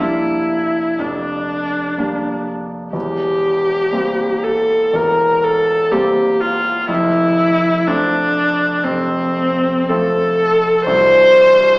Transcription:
0.00 0.95 F1 soft
0.00 0.95 F2 soft
0.00 0.95 G3 soft
0.00 0.96 A#3 soft
0.00 0.96 D4 soft
0.00 1.01 E4 soft
0.99 2.90 F1 soft
0.99 2.90 F2 soft
0.99 2.46 D4 soft
1.98 2.90 G3 soft
1.98 2.90 A#3 soft
1.98 2.90 D4 soft
2.93 4.90 E1 soft
2.93 4.90 E2 soft
2.93 4.45 G4 medium
3.92 4.90 G3 soft
3.92 4.90 A#3 soft
3.92 4.91 C4 soft
4.43 4.96 A4 medium
4.94 6.85 E1 soft
4.94 6.85 E2 soft
4.94 5.45 A#4 medium
5.44 5.93 A4 medium
5.91 6.85 G3 soft
5.91 6.85 A#3 soft
5.91 6.85 C4 soft
5.91 6.42 G4 soft
6.40 6.89 F4 medium
6.88 8.81 F1 soft
6.88 8.81 F2 soft
6.88 7.88 E4 medium
7.87 8.81 F3 soft
7.87 8.81 A3 soft
7.87 8.82 C4 soft
7.87 8.85 D4 medium
8.83 10.83 F1 soft
8.83 10.83 F2 soft
8.83 9.90 C4 medium
9.89 10.83 F3 soft
9.89 10.83 A3 soft
9.89 10.83 C4 soft
9.89 10.84 A4 medium
10.85 11.79 C1 soft
10.85 11.79 C2 medium
10.85 11.79 C5 medium

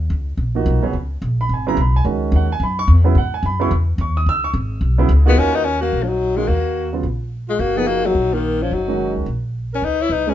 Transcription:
0.10 0.37 C#2 medium
0.37 0.65 A#1 medium
0.55 0.81 F3 medium
0.55 0.81 A#3 medium
0.55 0.82 D#4 medium
0.55 0.82 F#4 medium
0.66 0.82 B1 medium
0.83 0.93 C#3 medium
0.83 0.93 F#3 medium
0.83 0.93 B3 medium
0.83 0.93 C#4 medium
0.83 muted upright bass stroke soft
0.93 1.20 C#2 medium
1.22 1.49 A#1 medium
1.41 1.50 B5 medium
1.49 1.76 G#1 medium
1.54 1.68 G#5 medium
1.67 1.76 C#3 medium
1.67 1.76 F#3 medium
1.67 1.76 B3 medium
1.67 1.77 E4 medium
1.67 1.78 A#5 loud
1.77 2.04 B1 loud
1.81 1.96 B5 medium
1.96 2.02 G#5 medium
2.04 2.31 C#2 medium
2.04 2.46 D#3 medium
2.04 2.46 G#3 medium
2.04 2.46 C#4 medium
2.04 2.46 F#4 medium
2.32 2.59 D#2 medium
2.36 2.51 F#5 medium
2.52 2.61 G#5 loud
2.60 2.87 F#2 medium
2.60 2.78 B5 medium
2.79 2.89 C#6 loud
2.88 3.14 E2 loud
3.04 3.14 C#3 medium
3.04 3.15 F#3 medium
3.04 3.15 B3 medium
3.04 3.15 E4 medium
3.15 3.42 G#2 medium
3.15 3.33 F#5 medium
3.34 3.44 G#5 medium
3.43 3.70 F#2 medium
3.43 3.61 B5 medium
3.60 3.70 C#3 medium
3.60 3.70 F#3 medium
3.60 3.70 B3 medium
3.60 3.70 E4 medium
3.60 3.71 C#6 medium
3.71 3.98 E2 medium
3.98 4.25 D#2 medium
3.98 4.16 C#6 medium
4.17 4.27 D#6 medium
4.26 4.53 C#2 medium
4.26 4.44 E6 loud
4.44 4.51 C#6 loud
4.54 4.80 G#1 medium
4.81 5.08 B1 medium
4.98 5.08 C#3 medium
4.98 5.08 F#3 medium
4.98 5.09 B3 medium
4.98 5.09 E4 medium
5.09 5.36 C#2 loud
5.26 5.63 A#3 medium
5.26 5.40 B3 medium
5.26 5.63 D#4 medium
5.26 5.62 F4 medium
5.26 5.63 F#4 loud
5.26 5.38 G#4 medium
5.37 5.90 D#2 medium
5.37 5.57 C#4 medium
5.37 5.54 A#4 medium
5.53 5.66 D#4 medium
5.53 5.64 B4 medium
5.63 5.82 C#4 medium
5.63 5.80 A#4 medium
5.80 6.04 A#3 medium
5.80 6.03 F#4 medium
5.93 6.46 A#1 medium
6.02 6.10 F3 medium
6.02 6.09 C#4 soft
6.07 6.38 F#3 medium
6.07 6.37 D#4 medium
6.36 6.47 D#3 medium
6.36 6.49 G#3 medium
6.36 6.47 G#3 soft
6.36 6.47 C#4 soft
6.36 6.49 F4 medium
6.36 6.48 F#4 medium
6.47 7.01 D#2 medium
6.47 6.93 A#3 medium
6.47 6.93 F#4 medium
6.93 7.03 C#3 medium
6.93 7.03 F#3 soft
6.93 7.03 B3 medium
6.93 7.03 F4 medium
7.03 7.56 A#1 medium
7.48 7.62 G#3 medium
7.48 7.60 F4 medium
7.58 8.12 F#1 medium
7.58 7.79 A#3 medium
7.58 7.78 F#4 medium
7.76 8.13 F3 medium
7.76 8.13 A#3 medium
7.76 7.89 B3 medium
7.76 8.13 D#4 medium
7.76 7.89 G#4 medium
7.76 8.13 G#4 medium
7.87 8.07 A#3 medium
7.87 8.06 F#4 medium
8.05 8.35 F#3 medium
8.05 8.35 D#4 medium
8.15 8.68 A#1 medium
8.33 8.64 D#3 medium
8.33 8.63 A#3 medium
8.62 8.75 F3 medium
8.62 8.75 C#4 medium
8.71 9.13 F#1 medium
8.71 9.17 F#3 medium
8.71 9.17 D#4 medium
8.88 9.24 D#3 medium
8.88 9.24 G#3 medium
8.88 9.25 C#4 medium
8.88 9.25 F#4 medium
9.16 9.26 C#2 medium
9.26 9.79 A#1 medium
9.73 9.86 C#4 medium
9.73 9.85 A#4 medium
9.82 10.08 C#2 medium
9.82 10.03 D#4 medium
9.82 10.02 B4 medium
10.00 10.14 E4 medium
10.00 10.11 C#5 medium
10.09 10.34 C2 medium
10.09 10.31 D#4 medium
10.09 10.29 B4 medium
10.27 10.34 G#3 medium
10.27 10.34 C#4 medium
10.27 10.34 F#4 soft
10.27 10.34 G#4 medium
10.27 10.34 B4 medium

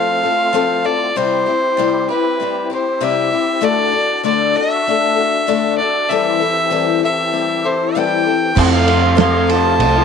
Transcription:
0.00 0.23 F3 medium
0.00 1.13 A3 medium
0.00 0.23 C4 medium
0.00 1.13 C4 medium
0.00 0.23 F4 medium
0.00 1.12 F4 medium
0.00 0.22 A4 medium
0.00 0.87 F5 loud
0.23 0.53 C4 soft
0.23 0.53 F4 soft
0.23 0.54 A4 medium
0.53 0.84 F3 loud
0.53 0.85 C4 loud
0.53 0.84 F4 medium
0.53 0.83 A4 loud
0.84 1.16 C4 soft
0.84 1.16 F4 soft
0.84 1.15 A4 medium
0.84 1.18 D5 loud
1.16 1.46 C3 medium
1.16 1.47 G3 medium
1.16 3.61 C4 medium
1.16 1.47 C4 medium
1.16 3.61 E4 medium
1.16 1.46 E4 loud
1.16 3.61 G4 medium
1.16 1.45 G4 loud
1.16 2.09 C5 loud
1.46 1.78 C4 soft
1.46 1.78 E4 soft
1.46 1.77 G4 medium
1.77 2.08 C3 medium
1.77 2.09 G3 medium
1.77 2.09 C4 medium
1.77 2.09 E4 medium
1.77 2.08 G4 loud
2.09 2.40 C4 medium
2.09 2.40 E4 medium
2.09 2.39 G4 medium
2.09 2.67 B4 loud
2.40 2.70 G3 medium
2.40 2.71 C4 medium
2.40 2.70 E4 medium
2.40 2.69 G4 medium
2.70 3.00 C4 soft
2.70 3.00 E4 medium
2.70 3.01 G4 medium
2.70 3.04 C5 medium
3.01 3.32 C3 medium
3.01 3.32 G3 medium
3.01 3.32 C4 medium
3.01 3.31 E4 medium
3.01 3.30 G4 medium
3.01 3.66 E5 loud
3.31 3.62 C4 medium
3.31 3.61 E4 soft
3.31 3.62 G4 medium
3.61 3.92 D3 medium
3.61 3.93 A3 medium
3.61 3.94 D4 medium
3.61 6.07 D4 medium
3.61 3.92 F#4 loud
3.61 6.07 F#4 medium
3.61 6.07 A4 medium
3.61 3.91 A4 loud
3.61 4.25 D5 loud
3.92 4.24 D4 soft
3.92 4.24 F#4 medium
3.92 4.24 A4 medium
4.23 4.55 D3 medium
4.23 4.55 A3 medium
4.23 4.55 D4 medium
4.23 4.55 F#4 medium
4.23 4.53 A4 loud
4.23 4.58 D5 loud
4.55 4.87 D4 medium
4.55 4.87 F#4 medium
4.55 4.86 A4 medium
4.55 5.78 E5 loud
4.87 5.18 A3 medium
4.87 5.18 D4 medium
4.87 5.17 F#4 medium
4.87 5.14 A4 medium
5.16 5.47 D4 soft
5.16 5.47 F#4 medium
5.16 5.47 A4 medium
5.47 5.78 D3 medium
5.47 5.79 A3 medium
5.47 5.79 D4 loud
5.47 5.79 F#4 loud
5.47 5.77 A4 loud
5.78 6.11 D4 soft
5.78 6.10 F#4 soft
5.78 6.09 A4 medium
5.78 6.11 D5 loud
6.08 8.54 E3 medium
6.08 6.41 E3 medium
6.08 6.41 G3 medium
6.08 8.53 C4 medium
6.08 6.41 C4 medium
6.08 6.41 E4 loud
6.08 8.53 G4 medium
6.08 8.53 A4 medium
6.08 6.39 A4 loud
6.08 7.02 E5 loud
6.40 6.70 C4 soft
6.40 6.71 E4 medium
6.40 6.71 A4 medium
6.70 7.02 E3 medium
6.70 7.02 G3 medium
6.70 7.02 C4 medium
6.70 7.02 E4 medium
6.70 7.02 A4 loud
7.03 7.32 C4 medium
7.03 7.33 E4 medium
7.03 7.33 A4 medium
7.03 7.67 E5 loud
7.33 7.64 G3 medium
7.33 7.64 C4 medium
7.33 7.64 E4 medium
7.33 7.63 A4 medium
7.64 7.95 C4 soft
7.64 7.95 E4 soft
7.64 7.95 A4 medium
7.64 7.99 C5 medium
7.95 8.26 E3 medium
7.95 8.26 G3 medium
7.95 8.26 C4 medium
7.95 8.26 E4 medium
7.95 8.24 A4 medium
7.95 8.60 G5 loud
8.25 8.55 C4 soft
8.25 8.56 E4 soft
8.25 8.56 A4 medium
8.54 9.17 F2 medium
8.54 9.81 F2 loud
8.54 9.18 C3 loud
8.54 8.87 F3 medium
8.54 8.86 F3 loud
8.54 8.87 A3 loud
8.54 10.04 C4 medium
8.54 8.87 C4 medium
8.54 10.04 F4 medium
8.54 8.87 F4 medium
8.54 10.04 A4 medium
8.54 8.85 A4 loud
8.54 kick loud
8.54 crash loud
8.59 8.88 C4 loud
8.59 8.88 F4 loud
8.59 9.19 F5 loud
8.86 9.04 F3 medium
8.86 9.03 A3 medium
8.86 9.03 C4 medium
8.86 9.15 C4 soft
8.86 9.16 F4 medium
8.86 9.01 F4 medium
8.86 9.16 A4 medium
8.86 ride medium
9.02 9.18 F3 medium
9.02 9.19 A3 medium
9.02 9.20 C4 medium
9.02 9.19 F4 medium
9.15 9.80 F2 loud
9.15 9.80 C3 loud
9.15 9.47 F3 medium
9.15 9.48 C4 medium
9.15 9.48 F4 medium
9.15 9.46 A4 loud
9.15 snare loud
9.15 ride loud
9.19 9.48 F3 loud
9.19 9.49 A3 loud
9.19 9.51 C4 loud
9.19 9.51 F4 loud
9.19 9.51 F5 loud
9.47 9.97 F3 medium
9.47 9.96 A3 medium
9.47 9.80 C4 soft
9.47 9.80 F4 medium
9.47 9.79 A4 medium
9.47 10.04 A5 loud
9.47 ride medium
9.51 9.96 C4 medium
9.51 9.95 F4 medium
9.79 10.04 C2 loud
9.79 10.04 F3 medium
9.79 10.04 C4 medium
9.79 10.04 F4 medium
9.79 ride loud
9.84 10.04 A4 medium
9.96 10.04 F3 medium
9.96 10.04 A3 medium
9.96 10.04 C4 medium
9.96 10.04 F4 medium

